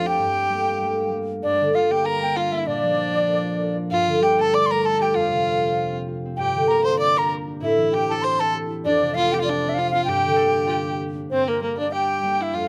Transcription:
0.00 0.25 F2 medium
0.00 0.25 F3 soft
0.00 0.49 A3 soft
0.00 1.64 C4 soft
0.00 2.04 D4 medium
0.06 1.13 G4 medium
0.06 1.10 G5 medium
0.19 1.42 G2 medium
0.49 0.80 G3 soft
0.49 0.81 A3 soft
0.49 0.82 A#3 medium
0.81 1.10 G3 soft
0.81 1.12 A3 soft
0.81 1.15 A#3 medium
1.10 1.49 G3 soft
1.10 1.97 A3 soft
1.15 1.90 A#3 soft
1.43 2.73 G2 medium
1.43 1.72 D4 medium
1.43 1.76 D5 medium
1.60 2.73 D3 medium
1.74 2.73 G3 medium
1.74 1.93 F4 medium
1.74 1.93 F5 medium
1.91 2.22 A#3 medium
1.91 2.07 G4 medium
1.91 2.07 G5 medium
2.04 2.35 D4 medium
2.04 2.38 A#4 medium
2.04 2.22 A#5 medium
2.22 2.52 A#3 medium
2.22 2.38 G5 medium
2.35 2.96 D4 medium
2.35 2.56 F4 medium
2.35 2.53 F5 medium
2.52 4.43 A#3 medium
2.52 2.67 E4 medium
2.52 2.69 E5 medium
2.66 3.96 A#2 medium
2.66 3.73 D4 medium
2.66 3.77 D5 loud
2.83 3.96 F3 medium
2.96 4.52 D4 medium
3.14 3.44 F4 medium
3.27 3.58 A#4 soft
3.45 3.76 F4 medium
3.58 4.43 A#4 medium
3.76 5.75 F4 medium
3.90 5.20 G2 medium
3.90 4.24 F4 medium
3.90 4.20 F5 loud
4.07 5.20 D3 medium
4.21 5.20 G3 medium
4.21 4.40 G4 medium
4.21 4.43 G5 medium
4.37 4.69 A3 medium
4.37 4.55 A4 medium
4.41 4.56 A5 medium
4.52 4.82 D4 medium
4.52 4.72 D5 medium
4.52 4.68 D6 loud
4.66 5.00 A3 medium
4.66 4.72 C6 medium
4.71 4.87 A#4 medium
4.71 4.84 A#5 medium
4.83 6.85 D4 medium
4.83 5.01 A4 medium
4.83 5.04 A5 medium
5.00 5.44 A3 medium
5.00 5.15 G4 medium
5.00 5.17 G5 loud
5.14 6.43 F2 medium
5.14 5.96 F4 medium
5.14 5.97 F5 medium
5.30 6.43 C3 medium
5.45 6.74 A3 medium
5.62 5.92 C4 medium
5.75 6.07 F4 medium
5.93 6.25 C4 medium
6.08 7.84 F4 medium
6.25 7.92 C4 medium
6.36 7.66 G2 medium
6.36 6.72 G4 medium
6.36 6.69 G5 medium
6.54 7.66 D3 medium
6.68 7.67 A#3 medium
6.68 6.84 A#4 medium
6.68 6.87 A#5 medium
6.84 7.16 D4 medium
6.84 6.98 C5 medium
6.84 6.99 C6 medium
6.99 7.30 G4 medium
6.99 7.18 D5 medium
6.99 7.20 D6 loud
7.17 7.47 D4 medium
7.17 7.30 A#4 medium
7.17 7.31 A#5 medium
7.30 8.24 G4 medium
7.47 9.45 D4 medium
7.61 8.89 A2 medium
7.61 7.95 E4 medium
7.61 7.91 E5 medium
7.78 8.89 E3 medium
7.92 9.30 C4 medium
7.92 8.12 G4 medium
7.92 8.08 G5 medium
8.09 8.39 E4 medium
8.09 8.25 A4 medium
8.09 8.23 A5 medium
8.22 8.55 G4 medium
8.22 8.42 C5 medium
8.22 8.41 C6 loud
8.40 8.70 E4 medium
8.40 8.54 A4 medium
8.40 8.54 A5 medium
8.55 10.69 G4 medium
8.71 8.90 E4 medium
8.84 10.13 F2 medium
8.84 9.14 D4 medium
8.84 9.16 D5 loud
9.01 10.13 C3 medium
9.14 10.45 A3 medium
9.14 9.35 F4 medium
9.14 9.34 F5 loud
9.31 9.63 C4 medium
9.31 9.40 G4 medium
9.31 9.40 G5 medium
9.39 9.50 F4 medium
9.39 9.44 F5 medium
9.44 9.76 D4 medium
9.44 9.70 D5 medium
9.49 9.80 D4 medium
9.63 9.91 C4 medium
9.69 9.75 E5 medium
9.74 10.55 D4 medium
9.74 9.90 F5 medium
9.78 9.94 F4 medium
9.90 12.68 C4 medium
9.90 10.04 F5 medium
9.95 10.10 F4 medium
10.05 11.29 G2 medium
10.05 10.37 G4 medium
10.05 10.94 G5 loud
10.24 11.36 D3 medium
10.36 11.60 A#3 medium
10.36 10.69 G4 medium
10.36 10.40 A4 medium
10.55 10.85 D4 medium
10.67 10.71 F4 medium
10.67 10.98 G4 medium
10.67 11.00 G4 medium
10.85 11.15 D4 medium
10.99 12.68 G4 medium
11.15 11.60 D4 medium
11.30 12.59 G2 medium
11.30 11.49 C4 medium
11.30 11.46 C5 medium
11.48 11.62 A#3 medium
11.48 11.61 A#4 medium
11.60 12.22 G3 medium
11.60 12.23 A#3 soft
11.60 11.77 A#3 medium
11.60 12.24 D4 medium
11.60 11.78 A#4 medium
11.77 11.91 D4 medium
11.77 11.94 D5 medium
11.92 12.42 G4 medium
11.92 12.44 G5 medium
12.23 12.59 G3 medium
12.23 12.68 A#3 soft
12.23 12.68 D4 soft
12.41 12.55 E4 medium
12.41 12.57 E5 medium
12.53 12.68 F2 soft
12.53 12.66 F4 medium
12.53 12.68 F5 medium

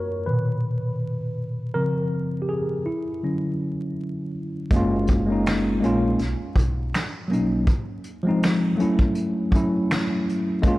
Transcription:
0.00 0.28 F#2 soft
0.00 0.28 A#3 medium
0.00 0.28 F4 soft
0.00 0.28 F#4 medium
0.00 0.27 A#4 medium
0.00 0.28 C#5 medium
0.26 1.34 A#2 medium
0.26 1.34 B2 soft
0.26 1.34 D#3 soft
0.26 1.33 B4 medium
1.74 2.26 C#3 soft
1.74 2.26 F3 soft
1.74 2.26 C4 medium
1.74 2.44 A#4 loud
2.42 2.48 G4 medium
2.49 2.87 G#4 medium
2.86 4.30 E4 medium
3.23 4.67 D3 medium
3.23 4.67 F#3 soft
3.23 4.67 C#4 medium
4.71 5.78 F#1 loud
4.71 5.12 G#3 loud
4.71 5.13 A#3 medium
4.71 kick loud
4.71 closed hi-hat medium
4.75 5.14 C#4 medium
4.75 5.15 F4 loud
5.07 kick medium
5.07 closed hi-hat medium
5.26 5.68 G#3 medium
5.26 5.69 A#3 medium
5.26 5.70 C#4 medium
5.32 5.71 D#4 loud
5.46 finger snap medium
5.46 snare loud
5.46 closed hi-hat medium
5.80 6.17 A#1 medium
5.80 6.18 G#3 medium
5.80 6.19 A#3 medium
5.80 6.20 C#4 medium
5.80 closed hi-hat medium
5.86 6.21 F4 medium
6.19 6.38 B1 medium
6.19 snare soft
6.19 closed hi-hat medium
6.40 muted upright bass stroke soft
6.56 6.90 B1 medium
6.56 kick medium
6.56 closed hi-hat medium
6.94 finger snap medium
6.94 snare loud
6.94 closed hi-hat medium
7.28 7.65 B1 medium
7.28 7.66 F#3 medium
7.28 7.67 A#3 medium
7.28 7.68 C#4 medium
7.33 7.69 D#4 medium
7.33 closed hi-hat medium
7.67 kick loud
7.67 closed hi-hat medium
8.04 closed hi-hat medium
8.23 8.64 F3 medium
8.23 8.65 G#3 medium
8.23 8.66 C4 medium
8.29 8.67 D#4 medium
8.43 finger snap medium
8.43 snare loud
8.43 closed hi-hat medium
8.76 9.38 F#3 medium
8.76 9.39 A3 medium
8.76 9.40 C#4 medium
8.80 9.41 E4 medium
8.80 closed hi-hat medium
8.99 kick medium
9.15 closed hi-hat medium
9.51 10.34 F#3 medium
9.51 10.35 A3 medium
9.51 10.36 C#4 medium
9.51 kick medium
9.55 10.37 E4 medium
9.55 closed hi-hat medium
9.91 finger snap medium
9.91 snare loud
9.91 closed hi-hat medium
10.29 closed hi-hat medium
10.62 10.79 G#3 loud
10.62 10.79 A#3 medium
10.62 10.79 C#4 medium
10.62 kick loud
10.62 closed hi-hat medium
10.68 10.79 F4 loud

